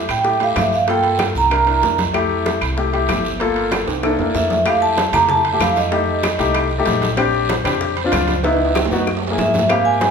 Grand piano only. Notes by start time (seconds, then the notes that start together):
0.24 A3 E4 G4
0.40 A3 E4 G4
0.87 A#3 F4 A4
1.50 D4 E4 A#4
1.66 D4 E4 A#4
2.13 A3 E4 G4
2.77 A3 E4 G4
2.93 A3 E4 G4
3.40 A#3 F4 A4
4.03 A#3 D4 E4 A4
4.19 A#3 D4 E4 A4
4.65 A3 E4 G4
5.13 A3 E4 G4
5.52 A3 E4 G4
5.91 A3 D#4 G4
6.38 A3 D#4 G4
6.78 A3 D#4 G4
7.17 C4 D4 G4
7.64 C4 D4 G4
8.04 C4 D4 F4
8.43 B3 D#4 E4
8.91 B3 D#4 F#4
9.30 A#3 E4 G#4
9.69 A#3 C4 G4